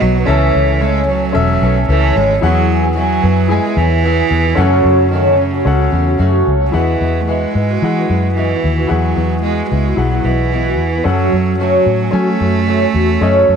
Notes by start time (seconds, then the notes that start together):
Already playing: B2 F#3 B3 D#4 F#4 B4 F#5
0.01 B1 F#3
0.15 B3 D#4 F#4
0.26 C#2 C#3 E3 A3 C#4 A4 E5
0.55 C#2
0.69 A3 C#4 A4
0.80 C#3 E3 G#3 A3 C#4 A4
1.07 E3 F#3 A3 C#4 A4
1.22 A3 C#4 A4
1.32 E1 C#4 A4 E5
1.50 A3 C#4 A4
1.61 B1 E3 A3 C#4 A4
1.77 A3 C#4 A4
1.89 C#2 C#3 E3 A3 C#4 A4
2.16 G#1 G#3
2.30 A3 C#4 A4
2.41 E2 E3 F#3 B3 E4 G#4 F#5
2.82 B3 E4 G#4
2.95 E3 F#3 B3 E4 G#4
3.22 F#2 F#3 B3 E4 G#4
3.48 G#3 E4 G#4 G#5
3.64 B3 E4 G#4
3.77 E2 E3 F#3 B3 E4 G#4
4.03 E3 F#3 B3 E4 G#4
4.31 E2
4.46 B3 E4 G#4
4.55 F#2 C#3 F#3 A3 C#4 F#4 A4 F#5
4.85 F#2
4.99 F#3 A3 C#4 F#4
5.11 F#2 C#3 D#3 F#3 A3 C#4 F#4
5.37 C#3 F#3 A3 C#4
5.41 F#4
5.54 F#3 A3 C#4 F#4
5.65 C#2 C#4 A4 F#5
5.80 F#3 A3 C#4 F#4
5.91 E2 F#3 A3 C#4 F#4
6.05 F#3 A3 C#4 F#4
6.18 F#2 C#3 F#3 A3 C#4 F#4
6.47 C#2
6.60 F#3 A3 C#4 F#4
6.67 F#3
6.72 E2 E3 G#3 B3 E4 F#4 G#4 F#5
6.99 E2 G#3 B3 E4 F#4
7.21 A3
7.27 E3 G#3 B3 E4 F#4
7.54 G#2 G#3 B3 E4 F#4
7.70 B3 E4 F#4
7.82 E3 E4 G#4 F#5
7.96 B3 E4 F#4
8.08 F#2 G#3 B3 E4 F#4
8.36 E3 G#3 B3 E4 F#4
8.52 B3 E4 F#4
8.64 D#2
8.77 B3 E4 F#4
8.87 E2 E3 F#3 G#3 B3 E4 F#4 G#4 F#5
9.16 E2 G#3 B3 E4 F#4
9.42 E3 G#3 B3 E4 F#4
9.70 C#2 G#3 B3 E4 F#4
9.85 B3 E4 F#4
9.95 B1 F#3 E4 G#4 F#5
10.11 B3 E4 F#4
10.24 B1 E3 G#3 B3 E4 F#4
10.51 E3 G#3 B3 E4 F#4
10.66 B3 E4 F#4
10.78 E2
10.93 B3 E4 F#4
11.04 F#2 C#3 F#3 A3 C#4 F#4 A4 F#5
11.32 F#2 F#3 A3 C#4 F#4
11.59 F#2 C#3 F#3 A3 C#4 F#4
11.86 A2 F#3 A3 C#4 F#4
12.02 F#3 A3 C#4 F#4
12.11 F#3 A3 C#4 A4 G#5
12.28 F#3 A3 C#4 F#4
12.40 F#2 F#3 A3 C#4 F#4
12.66 F#2 C#3 F#3 A3 C#4 F#4
12.81 F#3 A3 C#4 F#4
12.94 E2
13.09 F#3 A3 C#4 F#4
13.21 F#2 C#3 F#3 A3 C#4 F#4 A4 D#5
13.48 F#2 F#3 C#4 F#4